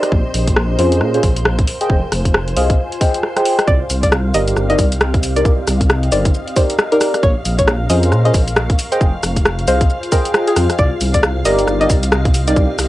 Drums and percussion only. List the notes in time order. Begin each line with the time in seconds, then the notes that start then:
0.03 cross-stick, closed hi-hat
0.12 kick
0.34 open hi-hat
0.47 kick, closed hi-hat
0.56 cross-stick
0.79 open hi-hat
0.92 closed hi-hat
1.01 cross-stick
1.14 closed hi-hat
1.23 kick, open hi-hat
1.36 closed hi-hat
1.45 cross-stick
1.59 kick, closed hi-hat
1.68 open hi-hat
1.81 closed hi-hat
1.90 kick
2.12 cross-stick, open hi-hat
2.25 kick, closed hi-hat
2.34 cross-stick
2.48 closed hi-hat
2.57 open hi-hat
2.70 kick, closed hi-hat
2.92 closed hi-hat
3.01 kick, open hi-hat
3.14 closed hi-hat
3.23 cross-stick
3.37 cross-stick, closed hi-hat
3.45 open hi-hat
3.59 cross-stick, closed hi-hat
3.68 kick, shaker
3.90 open hi-hat, shaker
4.03 kick, closed hi-hat, shaker
4.12 cross-stick, shaker
4.34 open hi-hat, shaker
4.48 closed hi-hat, shaker
4.57 cross-stick, shaker
4.70 closed hi-hat
4.79 kick, open hi-hat, shaker
4.92 closed hi-hat, shaker
5.01 cross-stick, shaker
5.14 kick, closed hi-hat
5.23 open hi-hat, shaker
5.37 closed hi-hat, shaker
5.45 kick, shaker
5.68 cross-stick, open hi-hat, shaker
5.81 kick, closed hi-hat, shaker
5.90 cross-stick, shaker
6.03 closed hi-hat
6.12 open hi-hat, shaker
6.25 kick, closed hi-hat, shaker
6.34 shaker
6.48 closed hi-hat
6.56 kick, open hi-hat, shaker
6.70 closed hi-hat, shaker
6.79 cross-stick, shaker
6.92 closed hi-hat
7.01 cross-stick, open hi-hat, shaker
7.14 cross-stick, closed hi-hat, shaker
7.23 kick, shaker
7.45 open hi-hat, shaker
7.59 kick, closed hi-hat, shaker
7.68 cross-stick, shaker
7.90 open hi-hat, shaker
8.03 closed hi-hat, shaker
8.12 cross-stick, shaker
8.25 closed hi-hat
8.34 kick, open hi-hat, shaker
8.48 closed hi-hat, shaker
8.56 cross-stick, shaker
8.70 kick, closed hi-hat
8.79 open hi-hat, shaker
8.92 closed hi-hat, shaker
9.01 kick, shaker
9.23 cross-stick, open hi-hat, shaker
9.36 kick, closed hi-hat, shaker
9.45 cross-stick, shaker
9.59 closed hi-hat
9.68 open hi-hat, shaker
9.81 kick, closed hi-hat, shaker
9.90 shaker
10.03 closed hi-hat
10.12 kick, open hi-hat, shaker
10.25 closed hi-hat, shaker
10.34 cross-stick, shaker
10.47 closed hi-hat
10.56 cross-stick, open hi-hat, shaker
10.70 cross-stick, closed hi-hat, shaker
10.79 kick, shaker
11.01 open hi-hat, shaker
11.14 kick, closed hi-hat, shaker
11.23 cross-stick, shaker
11.45 open hi-hat, shaker
11.59 closed hi-hat, shaker
11.68 cross-stick, shaker
11.81 closed hi-hat
11.90 kick, open hi-hat, shaker
12.03 closed hi-hat, shaker
12.12 cross-stick, shaker
12.25 kick, closed hi-hat
12.34 open hi-hat, shaker
12.48 closed hi-hat, shaker
12.56 kick, shaker
12.79 cross-stick, open hi-hat, shaker